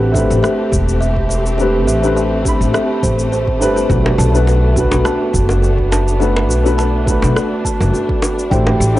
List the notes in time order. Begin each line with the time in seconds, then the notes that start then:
Already playing: A1 A3 C4 D4 G4 B4
0.12 A3 C4 D4 E5, kick, shaker
0.16 G4 B4
0.30 A1, shaker
0.43 E5, cross-stick, shaker
0.72 E1 G4, kick, shaker
0.89 shaker
1.01 E5, shaker
1.16 kick
1.29 E5, shaker
1.46 shaker
1.58 A3 C4 D4 G4 B4, shaker
1.87 A1 E5, shaker
2.02 A3 C4 D4 G4 B4, shaker
2.17 E5, shaker
2.43 A3 C4 D4 G4, kick, shaker
2.47 G4 B5
2.61 A1, shaker
2.74 E5, cross-stick, shaker
3.03 A1 C5, kick, shaker
3.19 shaker
3.32 C5, shaker
3.47 kick
3.59 G1 A3 C4 D4 G4 B4 C5, shaker
3.76 G4, shaker
3.88 B1 A3 B3 D4 F#4 B4, kick, shaker
4.06 high bongo
4.18 B1 A5, shaker
4.32 A3 B3 D4 F#4 B4, shaker
4.47 F#4, high bongo, shaker
4.74 A3 B3 D4 F#4, kick, shaker
4.78 F#4 B4
4.91 B1, high bongo, shaker
5.05 A5, cross-stick, shaker
5.33 F#1 F#4, kick, shaker
5.49 high bongo, shaker
5.62 F#4, shaker
5.78 kick
5.92 A5, high bongo, shaker
6.08 shaker
6.19 A3 B3 D4 F#4 B4, shaker
6.36 high bongo
6.49 B1 F#4, shaker
6.63 A3 B3 D4 F#4 B4, shaker
6.78 A5, high bongo, shaker
7.04 A3 B3 D4 F#4, kick
7.08 F#4 B4, shaker
7.22 B1, high bongo, shaker
7.36 F#4, cross-stick, shaker
7.65 A5, kick, shaker
7.80 F#1, high bongo, shaker
7.94 F#4, shaker
8.09 kick
8.22 F#4, high bongo, shaker
8.39 shaker
8.50 A1 G3 A3 C4 D4 E4 G4 C5 G5, kick, shaker
8.67 high bongo
8.80 A1 G4, shaker
8.94 A3 D4 E4 G4